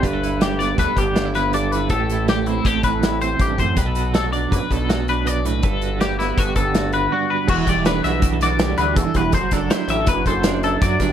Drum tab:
CC |----------|----------|----------|----------|
HH |xxxxxxxxxx|xxxxxxxxxx|xxxxxxxxxx|xxxxxxxx--|
SD |--ooo-oo--|--o-o-o---|--o---o---|--oo--o---|
BD |o---oo----|o---oo--oo|o---oo----|o---oo----|

CC |x---------|----------|
HH |-xxxxxxxxx|xxxxxxxxxx|
SD |--oo-oo---|-oo---o-oo|
BD |oo--o---oo|oo--oo--oo|